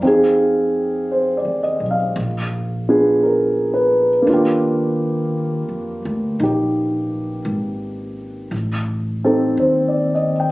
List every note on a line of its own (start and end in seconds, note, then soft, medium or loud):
0.00 1.40 F2 medium
0.00 2.15 C4 medium
0.00 0.24 F5 soft
0.05 2.16 D#4 soft
0.05 2.17 G4 soft
0.05 2.17 G#4 medium
1.12 1.61 C5 soft
1.37 1.82 D5 soft
1.45 1.77 D#2 soft
1.63 1.95 D#5 soft
1.80 2.13 B1 medium
1.91 2.27 F5 soft
2.16 4.23 A#1 medium
2.89 4.28 B3 soft
2.89 4.24 D4 soft
2.89 4.28 F4 soft
2.89 4.28 G#4 soft
3.23 4.07 A#4 soft
3.74 4.49 B4 soft
4.22 8.49 A#3 medium
4.22 8.51 D4 soft
4.27 5.64 D#2 medium
4.27 8.53 F4 medium
4.34 6.42 G4 medium
5.69 6.01 F2 medium
6.05 6.37 D2 medium
6.40 7.41 A#1 medium
6.40 8.52 D#4 soft
6.40 8.53 G4 soft
7.45 8.47 G#1 medium
8.51 9.54 A1 medium
9.24 10.52 C4 soft
9.24 10.52 D#4 soft
9.24 10.52 G4 soft
9.24 10.52 A4 soft
9.57 10.52 D#2 medium
9.57 10.09 C5 soft
9.88 10.33 D5 soft
10.15 10.46 D#5 soft
10.40 10.52 G5 soft